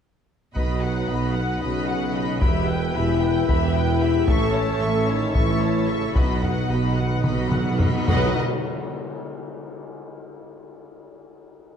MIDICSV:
0, 0, Header, 1, 13, 480
1, 0, Start_track
1, 0, Tempo, 532860
1, 509, Time_signature, 7, 3, 24, 8
1, 5791, Tempo, 554017
1, 10416, End_track
2, 0, Start_track
2, 0, Title_t, "Violin section"
2, 0, Program_c, 0, 48
2, 501, Note_on_c, 0, 83, 34
2, 727, Note_off_c, 0, 83, 0
2, 744, Note_on_c, 0, 78, 37
2, 982, Note_on_c, 0, 83, 34
2, 985, Note_off_c, 0, 78, 0
2, 1216, Note_on_c, 0, 78, 39
2, 1224, Note_off_c, 0, 83, 0
2, 1458, Note_on_c, 0, 83, 42
2, 1460, Note_off_c, 0, 78, 0
2, 1684, Note_off_c, 0, 83, 0
2, 1692, Note_on_c, 0, 78, 39
2, 1937, Note_off_c, 0, 78, 0
2, 1941, Note_on_c, 0, 83, 40
2, 2152, Note_off_c, 0, 83, 0
2, 2163, Note_on_c, 0, 83, 46
2, 2395, Note_off_c, 0, 83, 0
2, 2399, Note_on_c, 0, 79, 49
2, 2650, Note_off_c, 0, 79, 0
2, 2651, Note_on_c, 0, 83, 47
2, 2889, Note_on_c, 0, 79, 47
2, 2895, Note_off_c, 0, 83, 0
2, 3134, Note_off_c, 0, 79, 0
2, 3138, Note_on_c, 0, 83, 50
2, 3361, Note_off_c, 0, 83, 0
2, 3385, Note_on_c, 0, 79, 51
2, 3621, Note_off_c, 0, 79, 0
2, 3621, Note_on_c, 0, 83, 51
2, 3854, Note_on_c, 0, 85, 49
2, 3859, Note_off_c, 0, 83, 0
2, 4079, Note_off_c, 0, 85, 0
2, 4086, Note_on_c, 0, 81, 52
2, 4332, Note_off_c, 0, 81, 0
2, 4337, Note_on_c, 0, 85, 46
2, 4579, Note_off_c, 0, 85, 0
2, 4580, Note_on_c, 0, 81, 46
2, 4816, Note_on_c, 0, 85, 48
2, 4821, Note_off_c, 0, 81, 0
2, 5043, Note_off_c, 0, 85, 0
2, 5064, Note_on_c, 0, 81, 41
2, 5300, Note_on_c, 0, 85, 40
2, 5306, Note_off_c, 0, 81, 0
2, 5541, Note_on_c, 0, 83, 41
2, 5546, Note_off_c, 0, 85, 0
2, 5772, Note_off_c, 0, 83, 0
2, 5789, Note_on_c, 0, 78, 42
2, 6027, Note_off_c, 0, 78, 0
2, 6035, Note_on_c, 0, 83, 40
2, 6261, Note_on_c, 0, 78, 36
2, 6268, Note_off_c, 0, 83, 0
2, 6491, Note_on_c, 0, 83, 41
2, 6500, Note_off_c, 0, 78, 0
2, 6718, Note_off_c, 0, 83, 0
2, 6739, Note_on_c, 0, 78, 37
2, 6968, Note_on_c, 0, 83, 37
2, 6979, Note_off_c, 0, 78, 0
2, 7214, Note_off_c, 0, 83, 0
2, 7217, Note_on_c, 0, 78, 73
2, 7487, Note_off_c, 0, 78, 0
2, 10416, End_track
3, 0, Start_track
3, 0, Title_t, "Violin section"
3, 0, Program_c, 1, 48
3, 500, Note_on_c, 1, 75, 36
3, 727, Note_off_c, 1, 75, 0
3, 754, Note_on_c, 1, 78, 32
3, 981, Note_on_c, 1, 75, 37
3, 990, Note_off_c, 1, 78, 0
3, 1203, Note_on_c, 1, 78, 39
3, 1223, Note_off_c, 1, 75, 0
3, 1454, Note_off_c, 1, 78, 0
3, 1454, Note_on_c, 1, 75, 42
3, 1682, Note_off_c, 1, 75, 0
3, 1687, Note_on_c, 1, 78, 44
3, 1931, Note_on_c, 1, 75, 41
3, 1935, Note_off_c, 1, 78, 0
3, 2167, Note_on_c, 1, 76, 49
3, 2177, Note_off_c, 1, 75, 0
3, 2397, Note_off_c, 1, 76, 0
3, 2398, Note_on_c, 1, 79, 45
3, 2647, Note_on_c, 1, 76, 50
3, 2649, Note_off_c, 1, 79, 0
3, 2888, Note_on_c, 1, 79, 52
3, 2893, Note_off_c, 1, 76, 0
3, 3122, Note_on_c, 1, 76, 55
3, 3133, Note_off_c, 1, 79, 0
3, 3353, Note_off_c, 1, 76, 0
3, 3361, Note_on_c, 1, 79, 53
3, 3609, Note_off_c, 1, 79, 0
3, 3616, Note_on_c, 1, 76, 50
3, 3840, Note_off_c, 1, 76, 0
3, 3851, Note_on_c, 1, 76, 59
3, 4077, Note_off_c, 1, 76, 0
3, 4088, Note_on_c, 1, 73, 48
3, 4327, Note_on_c, 1, 76, 47
3, 4333, Note_off_c, 1, 73, 0
3, 4574, Note_off_c, 1, 76, 0
3, 4580, Note_on_c, 1, 73, 50
3, 4808, Note_on_c, 1, 76, 47
3, 4821, Note_off_c, 1, 73, 0
3, 5039, Note_off_c, 1, 76, 0
3, 5061, Note_on_c, 1, 73, 46
3, 5299, Note_on_c, 1, 76, 41
3, 5305, Note_off_c, 1, 73, 0
3, 5546, Note_off_c, 1, 76, 0
3, 5548, Note_on_c, 1, 75, 44
3, 5776, Note_off_c, 1, 75, 0
3, 5795, Note_on_c, 1, 78, 38
3, 6025, Note_on_c, 1, 75, 39
3, 6030, Note_off_c, 1, 78, 0
3, 6263, Note_off_c, 1, 75, 0
3, 6263, Note_on_c, 1, 78, 37
3, 6493, Note_on_c, 1, 75, 43
3, 6502, Note_off_c, 1, 78, 0
3, 6719, Note_off_c, 1, 75, 0
3, 6749, Note_on_c, 1, 78, 39
3, 6984, Note_off_c, 1, 78, 0
3, 6992, Note_on_c, 1, 75, 42
3, 7222, Note_off_c, 1, 75, 0
3, 7232, Note_on_c, 1, 75, 73
3, 7495, Note_off_c, 1, 75, 0
3, 10416, End_track
4, 0, Start_track
4, 0, Title_t, "Viola section"
4, 0, Program_c, 2, 48
4, 517, Note_on_c, 2, 66, 36
4, 736, Note_off_c, 2, 66, 0
4, 762, Note_on_c, 2, 71, 31
4, 994, Note_off_c, 2, 71, 0
4, 1005, Note_on_c, 2, 66, 36
4, 1234, Note_on_c, 2, 71, 38
4, 1235, Note_off_c, 2, 66, 0
4, 1469, Note_off_c, 2, 71, 0
4, 1474, Note_on_c, 2, 66, 42
4, 1693, Note_off_c, 2, 66, 0
4, 1715, Note_on_c, 2, 71, 38
4, 1946, Note_on_c, 2, 66, 44
4, 1949, Note_off_c, 2, 71, 0
4, 2184, Note_off_c, 2, 66, 0
4, 2184, Note_on_c, 2, 67, 51
4, 2406, Note_off_c, 2, 67, 0
4, 2416, Note_on_c, 2, 71, 45
4, 2657, Note_on_c, 2, 67, 49
4, 2658, Note_off_c, 2, 71, 0
4, 2895, Note_on_c, 2, 71, 48
4, 2898, Note_off_c, 2, 67, 0
4, 3134, Note_on_c, 2, 67, 49
4, 3137, Note_off_c, 2, 71, 0
4, 3359, Note_off_c, 2, 67, 0
4, 3373, Note_on_c, 2, 71, 53
4, 3615, Note_off_c, 2, 71, 0
4, 3620, Note_on_c, 2, 67, 49
4, 3842, Note_on_c, 2, 69, 54
4, 3859, Note_off_c, 2, 67, 0
4, 4073, Note_off_c, 2, 69, 0
4, 4088, Note_on_c, 2, 73, 48
4, 4333, Note_off_c, 2, 73, 0
4, 4335, Note_on_c, 2, 69, 52
4, 4577, Note_on_c, 2, 73, 45
4, 4578, Note_off_c, 2, 69, 0
4, 4819, Note_off_c, 2, 73, 0
4, 4819, Note_on_c, 2, 69, 47
4, 5045, Note_off_c, 2, 69, 0
4, 5056, Note_on_c, 2, 73, 42
4, 5296, Note_on_c, 2, 69, 41
4, 5302, Note_off_c, 2, 73, 0
4, 5544, Note_off_c, 2, 69, 0
4, 5548, Note_on_c, 2, 66, 42
4, 5776, Note_off_c, 2, 66, 0
4, 5795, Note_on_c, 2, 71, 37
4, 6029, Note_off_c, 2, 71, 0
4, 6032, Note_on_c, 2, 66, 41
4, 6267, Note_off_c, 2, 66, 0
4, 6268, Note_on_c, 2, 71, 36
4, 6504, Note_off_c, 2, 71, 0
4, 6507, Note_on_c, 2, 66, 39
4, 6726, Note_off_c, 2, 66, 0
4, 6743, Note_on_c, 2, 71, 37
4, 6981, Note_off_c, 2, 71, 0
4, 6983, Note_on_c, 2, 66, 42
4, 7222, Note_off_c, 2, 66, 0
4, 7223, Note_on_c, 2, 71, 77
4, 7490, Note_off_c, 2, 71, 0
4, 10416, End_track
5, 0, Start_track
5, 0, Title_t, "Pipe organ"
5, 0, Program_c, 3, 19
5, 492, Note_on_c, 3, 59, 40
5, 492, Note_on_c, 3, 78, 40
5, 493, Note_on_c, 3, 71, 38
5, 497, Note_on_c, 3, 63, 37
5, 2138, Note_off_c, 3, 78, 0
5, 2141, Note_off_c, 3, 63, 0
5, 2167, Note_on_c, 3, 79, 53
5, 2176, Note_on_c, 3, 64, 55
5, 3813, Note_off_c, 3, 59, 0
5, 3814, Note_off_c, 3, 71, 0
5, 3850, Note_off_c, 3, 79, 0
5, 3862, Note_on_c, 3, 61, 61
5, 3864, Note_on_c, 3, 76, 59
5, 3867, Note_on_c, 3, 69, 58
5, 5545, Note_off_c, 3, 64, 0
5, 5546, Note_on_c, 3, 63, 43
5, 5547, Note_on_c, 3, 66, 45
5, 5547, Note_on_c, 3, 78, 46
5, 5551, Note_off_c, 3, 61, 0
5, 5552, Note_off_c, 3, 76, 0
5, 5553, Note_off_c, 3, 69, 0
5, 5555, Note_on_c, 3, 59, 44
5, 7196, Note_off_c, 3, 63, 0
5, 7204, Note_off_c, 3, 66, 0
5, 7205, Note_off_c, 3, 59, 0
5, 7205, Note_off_c, 3, 78, 0
5, 7213, Note_on_c, 3, 63, 79
5, 7222, Note_on_c, 3, 66, 86
5, 7222, Note_on_c, 3, 78, 75
5, 7223, Note_on_c, 3, 59, 87
5, 7485, Note_off_c, 3, 63, 0
5, 7490, Note_off_c, 3, 59, 0
5, 7490, Note_off_c, 3, 66, 0
5, 7490, Note_off_c, 3, 78, 0
5, 10416, End_track
6, 0, Start_track
6, 0, Title_t, "French horn section"
6, 0, Program_c, 4, 60
6, 500, Note_on_c, 4, 66, 47
6, 1186, Note_off_c, 4, 66, 0
6, 1209, Note_on_c, 4, 59, 44
6, 1444, Note_on_c, 4, 61, 62
6, 1457, Note_off_c, 4, 59, 0
6, 2157, Note_off_c, 4, 61, 0
6, 2199, Note_on_c, 4, 59, 60
6, 2662, Note_on_c, 4, 64, 74
6, 2669, Note_off_c, 4, 59, 0
6, 3124, Note_off_c, 4, 64, 0
6, 3135, Note_on_c, 4, 64, 83
6, 3841, Note_off_c, 4, 64, 0
6, 3858, Note_on_c, 4, 69, 81
6, 4565, Note_off_c, 4, 69, 0
6, 4582, Note_on_c, 4, 63, 67
6, 4818, Note_off_c, 4, 63, 0
6, 4819, Note_on_c, 4, 64, 64
6, 5305, Note_off_c, 4, 64, 0
6, 5321, Note_on_c, 4, 61, 57
6, 5552, Note_off_c, 4, 61, 0
6, 5558, Note_on_c, 4, 59, 54
6, 6984, Note_off_c, 4, 59, 0
6, 7230, Note_on_c, 4, 59, 79
6, 7428, Note_off_c, 4, 59, 0
6, 10416, End_track
7, 0, Start_track
7, 0, Title_t, "Trombone section"
7, 0, Program_c, 5, 61
7, 509, Note_on_c, 5, 54, 55
7, 1190, Note_off_c, 5, 54, 0
7, 1223, Note_on_c, 5, 47, 45
7, 1446, Note_on_c, 5, 49, 58
7, 1464, Note_off_c, 5, 47, 0
7, 2173, Note_off_c, 5, 49, 0
7, 2180, Note_on_c, 5, 47, 62
7, 2650, Note_off_c, 5, 47, 0
7, 2666, Note_on_c, 5, 52, 69
7, 3099, Note_off_c, 5, 52, 0
7, 3110, Note_on_c, 5, 52, 73
7, 3828, Note_off_c, 5, 52, 0
7, 3860, Note_on_c, 5, 57, 82
7, 4580, Note_off_c, 5, 57, 0
7, 4588, Note_on_c, 5, 51, 60
7, 4825, Note_off_c, 5, 51, 0
7, 4840, Note_on_c, 5, 52, 57
7, 5306, Note_off_c, 5, 52, 0
7, 5316, Note_on_c, 5, 49, 49
7, 5546, Note_on_c, 5, 47, 60
7, 5554, Note_off_c, 5, 49, 0
7, 6979, Note_off_c, 5, 47, 0
7, 7208, Note_on_c, 5, 54, 78
7, 7414, Note_off_c, 5, 54, 0
7, 10416, End_track
8, 0, Start_track
8, 0, Title_t, "Cello section"
8, 0, Program_c, 6, 48
8, 507, Note_on_c, 6, 47, 50
8, 930, Note_off_c, 6, 47, 0
8, 986, Note_on_c, 6, 47, 46
8, 1408, Note_off_c, 6, 47, 0
8, 1470, Note_on_c, 6, 47, 47
8, 2100, Note_off_c, 6, 47, 0
8, 2186, Note_on_c, 6, 40, 65
8, 2606, Note_off_c, 6, 40, 0
8, 2664, Note_on_c, 6, 40, 59
8, 3085, Note_off_c, 6, 40, 0
8, 3142, Note_on_c, 6, 40, 59
8, 3775, Note_off_c, 6, 40, 0
8, 3857, Note_on_c, 6, 45, 70
8, 4281, Note_off_c, 6, 45, 0
8, 4339, Note_on_c, 6, 45, 60
8, 4764, Note_off_c, 6, 45, 0
8, 4820, Note_on_c, 6, 45, 56
8, 5462, Note_off_c, 6, 45, 0
8, 5547, Note_on_c, 6, 47, 50
8, 5972, Note_off_c, 6, 47, 0
8, 6026, Note_on_c, 6, 47, 48
8, 6445, Note_off_c, 6, 47, 0
8, 6501, Note_on_c, 6, 47, 45
8, 7134, Note_off_c, 6, 47, 0
8, 7230, Note_on_c, 6, 47, 89
8, 7494, Note_off_c, 6, 47, 0
8, 10416, End_track
9, 0, Start_track
9, 0, Title_t, "Timpani"
9, 0, Program_c, 7, 47
9, 5691, Note_on_c, 7, 47, 28
9, 5746, Note_off_c, 7, 47, 0
9, 5757, Note_on_c, 7, 47, 30
9, 5816, Note_off_c, 7, 47, 0
9, 5957, Note_on_c, 7, 47, 37
9, 6011, Note_off_c, 7, 47, 0
9, 6022, Note_on_c, 7, 47, 39
9, 6085, Note_off_c, 7, 47, 0
9, 6094, Note_on_c, 7, 47, 42
9, 6144, Note_off_c, 7, 47, 0
9, 6155, Note_on_c, 7, 47, 43
9, 6208, Note_off_c, 7, 47, 0
9, 6219, Note_on_c, 7, 47, 44
9, 6283, Note_off_c, 7, 47, 0
9, 6292, Note_on_c, 7, 47, 46
9, 6347, Note_off_c, 7, 47, 0
9, 6358, Note_on_c, 7, 47, 47
9, 6417, Note_off_c, 7, 47, 0
9, 6427, Note_on_c, 7, 47, 51
9, 6486, Note_off_c, 7, 47, 0
9, 6496, Note_on_c, 7, 47, 57
9, 6549, Note_off_c, 7, 47, 0
9, 6559, Note_on_c, 7, 47, 62
9, 6622, Note_off_c, 7, 47, 0
9, 6635, Note_on_c, 7, 47, 59
9, 6688, Note_off_c, 7, 47, 0
9, 6699, Note_on_c, 7, 47, 62
9, 6754, Note_off_c, 7, 47, 0
9, 6765, Note_on_c, 7, 47, 66
9, 6826, Note_off_c, 7, 47, 0
9, 6838, Note_on_c, 7, 47, 73
9, 6894, Note_off_c, 7, 47, 0
9, 6904, Note_on_c, 7, 47, 74
9, 6963, Note_off_c, 7, 47, 0
9, 6972, Note_on_c, 7, 47, 81
9, 7031, Note_off_c, 7, 47, 0
9, 7043, Note_on_c, 7, 47, 80
9, 7101, Note_off_c, 7, 47, 0
9, 7110, Note_on_c, 7, 47, 80
9, 7168, Note_off_c, 7, 47, 0
9, 7228, Note_on_c, 7, 47, 82
9, 7449, Note_off_c, 7, 47, 0
9, 10416, End_track
10, 0, Start_track
10, 0, Title_t, "Double bass section"
10, 0, Program_c, 8, 48
10, 499, Note_on_c, 8, 35, 45
10, 926, Note_off_c, 8, 35, 0
10, 982, Note_on_c, 8, 35, 44
10, 1406, Note_off_c, 8, 35, 0
10, 1463, Note_on_c, 8, 35, 51
10, 2097, Note_off_c, 8, 35, 0
10, 2187, Note_on_c, 8, 28, 60
10, 2607, Note_off_c, 8, 28, 0
10, 2657, Note_on_c, 8, 28, 64
10, 3081, Note_off_c, 8, 28, 0
10, 3133, Note_on_c, 8, 28, 65
10, 3770, Note_off_c, 8, 28, 0
10, 3858, Note_on_c, 8, 33, 60
10, 4282, Note_off_c, 8, 33, 0
10, 4330, Note_on_c, 8, 33, 59
10, 4759, Note_off_c, 8, 33, 0
10, 4816, Note_on_c, 8, 33, 54
10, 5460, Note_off_c, 8, 33, 0
10, 5542, Note_on_c, 8, 35, 48
10, 5969, Note_off_c, 8, 35, 0
10, 6011, Note_on_c, 8, 35, 44
10, 6437, Note_off_c, 8, 35, 0
10, 6499, Note_on_c, 8, 35, 48
10, 7134, Note_off_c, 8, 35, 0
10, 7219, Note_on_c, 8, 35, 74
10, 7489, Note_off_c, 8, 35, 0
10, 10416, End_track
11, 0, Start_track
11, 0, Title_t, "Tuba"
11, 0, Program_c, 10, 58
11, 510, Note_on_c, 10, 35, 42
11, 931, Note_off_c, 10, 35, 0
11, 991, Note_on_c, 10, 35, 43
11, 1411, Note_off_c, 10, 35, 0
11, 1469, Note_on_c, 10, 35, 48
11, 2100, Note_off_c, 10, 35, 0
11, 2181, Note_on_c, 10, 28, 64
11, 2604, Note_off_c, 10, 28, 0
11, 2666, Note_on_c, 10, 28, 59
11, 3086, Note_off_c, 10, 28, 0
11, 3137, Note_on_c, 10, 28, 65
11, 3772, Note_off_c, 10, 28, 0
11, 3858, Note_on_c, 10, 33, 69
11, 4282, Note_off_c, 10, 33, 0
11, 4332, Note_on_c, 10, 33, 64
11, 4761, Note_off_c, 10, 33, 0
11, 4819, Note_on_c, 10, 33, 58
11, 5462, Note_off_c, 10, 33, 0
11, 5551, Note_on_c, 10, 35, 48
11, 5974, Note_off_c, 10, 35, 0
11, 6029, Note_on_c, 10, 35, 46
11, 6446, Note_off_c, 10, 35, 0
11, 6499, Note_on_c, 10, 35, 48
11, 7134, Note_off_c, 10, 35, 0
11, 7223, Note_on_c, 10, 35, 83
11, 7424, Note_off_c, 10, 35, 0
11, 10416, End_track
12, 0, Start_track
12, 0, Title_t, "Taiko and cinematic ensemble drums"
12, 504, Note_on_c, 9, 41, 48
12, 594, Note_off_c, 9, 41, 0
12, 2176, Note_on_c, 9, 41, 80
12, 2266, Note_off_c, 9, 41, 0
12, 3140, Note_on_c, 9, 41, 77
12, 3230, Note_off_c, 9, 41, 0
12, 3854, Note_on_c, 9, 41, 88
12, 3945, Note_off_c, 9, 41, 0
12, 4819, Note_on_c, 9, 41, 79
12, 4909, Note_off_c, 9, 41, 0
12, 5546, Note_on_c, 9, 41, 86
12, 5636, Note_off_c, 9, 41, 0
12, 5790, Note_on_c, 9, 43, 42
12, 5877, Note_off_c, 9, 43, 0
12, 6494, Note_on_c, 9, 47, 71
12, 6580, Note_off_c, 9, 47, 0
12, 6733, Note_on_c, 9, 47, 74
12, 6820, Note_off_c, 9, 47, 0
12, 6974, Note_on_c, 9, 43, 84
12, 7061, Note_off_c, 9, 43, 0
12, 7223, Note_on_c, 9, 43, 91
12, 7310, Note_off_c, 9, 43, 0
12, 10416, End_track
13, 0, Start_track
13, 0, Title_t, "Tam-tam"
13, 7230, Note_on_c, 9, 52, 54
13, 7317, Note_off_c, 9, 52, 0
13, 10416, End_track
0, 0, End_of_file